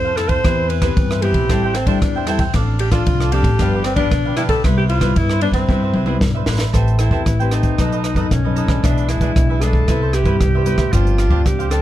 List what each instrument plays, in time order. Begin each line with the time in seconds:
Already playing: upright bass F2, nylon-string guitar C3 C4 E4 A4, alto saxophone C5
0.04 cavaquinho A4 C5 F5
0.16 nylon-string guitar C4 E4 A4, cavaquinho E4 A4 C5 F5, alto saxophone A4, cross-stick, ride
0.28 cavaquinho A4 C5 F5, alto saxophone C5, kick, ride
0.44 upright bass E2, nylon-string guitar E3 B3 C4 G4, cavaquinho E4 B4 C5 E5, kick, cross-stick, ride
0.69 cavaquinho E4 B4 C5 E5, alto saxophone B4, ride
0.82 nylon-string guitar B3 C4 G4, cavaquinho E4 B4 C5 E5, kick, cross-stick, ride
0.96 upright bass G2, nylon-string guitar E3, kick, ride
1.10 cavaquinho B4 C5 E5, cross-stick
1.22 nylon-string guitar B3 C4 G4, cavaquinho E4 B4 C5 E5, alto saxophone G4, ride
1.32 upright bass B1, kick, ride
1.49 upright bass A1, nylon-string guitar A2 G3 C4 E4, cavaquinho A4 C5 E5 G5, kick, cross-stick, ride
1.64 cavaquinho C5 E5 G5
1.75 alto saxophone C4, cavaquinho A4 C5 E5 G5, cross-stick, ride
1.87 nylon-string guitar G3 C4 E4, alto saxophone D4, cavaquinho A4 C5 E5 G5, kick, ride
2.02 upright bass E2, nylon-string guitar E3, kick, cross-stick, ride
2.16 cavaquinho C5 E5 G5
2.26 nylon-string guitar G3 C4 E4, alto saxophone E4, cavaquinho A4 C5 E5 G5, cross-stick, ride
2.39 cavaquinho C5 E5 G5, kick, ride
2.54 upright bass A1, nylon-string guitar A2 F3 C4 D4, cavaquinho D4 A4 D5 F5, kick, cross-stick, ride
2.79 cavaquinho D4 A4 D5 F5, alto saxophone G4, ride
2.91 nylon-string guitar F3 C4 D4, cavaquinho D4 A4 D5 F5, alto saxophone F4, kick, cross-stick, ride
3.06 upright bass C2, nylon-string guitar A2, kick, ride
3.20 cavaquinho A4 D5 F5, cross-stick
3.32 nylon-string guitar F3 C4 D4, cavaquinho D4 A4 D5 F5, alto saxophone G4, ride
3.42 upright bass A1, kick, ride
3.59 upright bass G1, nylon-string guitar G2 F3 B3 D4, cavaquinho D4 G4 B4 F5, kick, cross-stick, ride
3.74 cavaquinho G4 B4 F5
3.84 alto saxophone C4, cavaquinho D4 G4 B4 F5, cross-stick, ride
3.96 nylon-string guitar F3 B3 D4, alto saxophone D4, cavaquinho D4 G4 B4 F5, kick, ride
4.11 upright bass B1, nylon-string guitar D3, kick, cross-stick, ride
4.25 cavaquinho G4 B4 F5
4.36 nylon-string guitar F3 B3 D4, cavaquinho D4 G4 B4 F5, alto saxophone E4, cross-stick, ride
4.49 cavaquinho G4 B4 F5, alto saxophone A4, kick, ride
4.64 upright bass C2, nylon-string guitar C3 G3 B3 E4, cavaquinho E4 B4 C5 E5, kick, cross-stick, ride
4.78 alto saxophone G4
4.89 cavaquinho E4 B4 C5 E5, alto saxophone F4, ride
5.01 nylon-string guitar G3 B3 E4, cavaquinho E4 B4 C5 E5, kick, cross-stick, ride
5.16 upright bass G2, nylon-string guitar G2, alto saxophone E4, kick, ride
5.30 cavaquinho B4 C5 E5, cross-stick
5.41 nylon-string guitar G3 B3 E4, alto saxophone D4, cavaquinho E4 B4 C5 E5, ride
5.51 upright bass G2, alto saxophone C4, kick, ride
5.68 upright bass G2, nylon-string guitar C3 G3 E4, cavaquinho E4 B4 C5 E5, kick, high tom
5.83 cavaquinho B4 C5 E5
5.94 upright bass C2, cavaquinho E4 B4 C5 E5, mid tom
6.06 nylon-string guitar G3 B3 E4, cavaquinho E4 B4 C5 E5, mid tom
6.21 upright bass B1, nylon-string guitar G2, kick, snare
6.35 cavaquinho B4 C5 E5
6.46 upright bass A1, nylon-string guitar G3 B3 E4, cavaquinho E4 B4 C5 E5, snare
6.58 cavaquinho B4 C5 E5, snare
6.73 upright bass A1, nylon-string guitar A3 C4 G4 B4, cavaquinho A4 C5 E5 G5, kick, cross-stick, closed hi-hat
6.88 closed hi-hat
6.99 alto saxophone E4, cavaquinho A4 C5 E5 G5, cross-stick, closed hi-hat
7.09 upright bass E2, nylon-string guitar C4 G4 B4, cavaquinho A4 C5 E5 G5, kick
7.26 upright bass A1, nylon-string guitar E3, kick, cross-stick, closed hi-hat
7.39 nylon-string guitar C4 G4 B4, cavaquinho C5 E5 G5, closed hi-hat
7.51 alto saxophone D#4, cavaquinho A4 C5 E5 G5, cross-stick, closed hi-hat
7.63 kick, closed hi-hat
7.78 upright bass B1, nylon-string guitar B2 F#3 A3 D#4, cavaquinho D#4 A4 B4 D#5, kick, cross-stick, closed hi-hat
7.92 cavaquinho A4 B4 D#5, closed hi-hat
8.03 cavaquinho D#4 A4 B4 D#5, cross-stick, closed hi-hat
8.14 upright bass F#2, nylon-string guitar F#3 A3 D#4, cavaquinho D#4 A4 B4 D#5, kick, closed hi-hat
8.31 upright bass B1, nylon-string guitar F#2, alto saxophone C#4, kick, cross-stick, closed hi-hat
8.44 nylon-string guitar F#3 A3 D#4, cavaquinho A4 B4 D#5
8.56 cavaquinho D#4 A4 B4 D#5, closed hi-hat
8.67 upright bass B1, nylon-string guitar E3 G#3 D4, cavaquinho A4 B4 D#5, kick, cross-stick
8.83 upright bass B1, nylon-string guitar B2, cavaquinho D4 G#4 B4 E5, alto saxophone D4, kick, cross-stick, closed hi-hat
8.98 closed hi-hat
9.08 cavaquinho D4 G#4 B4 E5, alto saxophone E4, cross-stick, closed hi-hat
9.19 upright bass B1, nylon-string guitar E3 G#3 D4, cavaquinho D4 G#4 B4 E5, kick, closed hi-hat
9.36 upright bass B1, nylon-string guitar B2, kick, cross-stick, closed hi-hat
9.50 cavaquinho G#4 B4 E5
9.61 nylon-string guitar E3 G#3 D4, cavaquinho D4 G#4 B4 E5, alto saxophone A4, cross-stick, closed hi-hat
9.73 kick
9.88 upright bass C2, nylon-string guitar C3 G3 B3 E4, cavaquinho E4 B4 C5 E5, kick, cross-stick, closed hi-hat
10.02 cavaquinho B4 C5 E5
10.13 cavaquinho E4 B4 C5 E5, alto saxophone G4, cross-stick, closed hi-hat
10.23 upright bass G2, nylon-string guitar G3 B3 E4, cavaquinho E4 B4 C5 E5, kick, closed hi-hat
10.40 upright bass C2, nylon-string guitar G2, kick, cross-stick, closed hi-hat
10.55 cavaquinho B4 C5 E5
10.65 nylon-string guitar G3 B3 E4, cavaquinho E4 B4 C5 E5, closed hi-hat
10.76 upright bass D2, cavaquinho C5 E5, kick, cross-stick, closed hi-hat
10.80 cavaquinho B4
10.93 upright bass G1, nylon-string guitar G2 F3 C4 D4, cavaquinho D4 G4 C5 F5, alto saxophone F4, kick, cross-stick, closed hi-hat
11.07 closed hi-hat
11.18 cavaquinho D4 G4 C5 F5, cross-stick, closed hi-hat
11.29 upright bass D2, nylon-string guitar F3 C4 D4, cavaquinho D4 G4 C5 F5, kick
11.46 upright bass C#2, alto saxophone G4, kick, cross-stick, closed hi-hat
11.59 cavaquinho G4 C5 F5, closed hi-hat
11.70 nylon-string guitar F3 C4 D4, cavaquinho D4 G4 C5 F5, alto saxophone A4, cross-stick, closed hi-hat